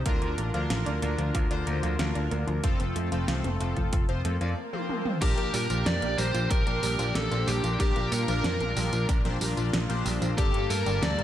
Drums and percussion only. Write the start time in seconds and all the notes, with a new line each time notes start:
0.06 kick, closed hi-hat
0.22 closed hi-hat
0.38 closed hi-hat
0.54 closed hi-hat
0.70 snare, closed hi-hat
0.86 closed hi-hat
1.02 closed hi-hat
1.19 closed hi-hat
1.35 kick, closed hi-hat
1.51 closed hi-hat
1.67 closed hi-hat
1.83 closed hi-hat
1.99 snare, closed hi-hat
2.15 closed hi-hat
2.31 closed hi-hat
2.48 closed hi-hat
2.64 kick, closed hi-hat
2.80 closed hi-hat
2.96 closed hi-hat
3.12 closed hi-hat
3.28 snare, closed hi-hat
3.44 closed hi-hat, mid tom
3.60 closed hi-hat
3.77 kick, closed hi-hat
3.93 kick, closed hi-hat
4.09 closed hi-hat
4.25 closed hi-hat
4.41 closed hi-hat
4.73 high tom
4.89 mid tom
5.05 mid tom
5.22 kick, closed hi-hat, crash, tambourine
5.38 closed hi-hat
5.54 open hi-hat, tambourine
5.70 closed hi-hat, tambourine
5.86 snare, closed hi-hat, tambourine
6.02 closed hi-hat
6.18 open hi-hat, tambourine
6.35 closed hi-hat, tambourine
6.51 kick, closed hi-hat, tambourine
6.67 closed hi-hat
6.83 open hi-hat, tambourine
6.99 closed hi-hat, tambourine
7.15 snare, closed hi-hat, tambourine
7.32 closed hi-hat
7.48 open hi-hat, tambourine
7.64 closed hi-hat, tambourine
7.80 kick, closed hi-hat, tambourine
7.96 closed hi-hat
8.12 open hi-hat, tambourine
8.28 closed hi-hat, tambourine
8.44 snare, closed hi-hat, tambourine
8.60 closed hi-hat, mid tom
8.77 open hi-hat, tambourine
8.93 closed hi-hat, tambourine
9.09 kick, closed hi-hat, tambourine
9.25 snare, closed hi-hat
9.41 open hi-hat, tambourine
9.57 closed hi-hat, tambourine
9.73 snare, closed hi-hat, tambourine
9.90 closed hi-hat
10.06 open hi-hat, tambourine
10.22 closed hi-hat, tambourine
10.38 kick, closed hi-hat, tambourine
10.54 closed hi-hat
10.70 open hi-hat, tambourine
10.86 closed hi-hat, tambourine
11.03 snare, closed hi-hat, tambourine
11.19 closed hi-hat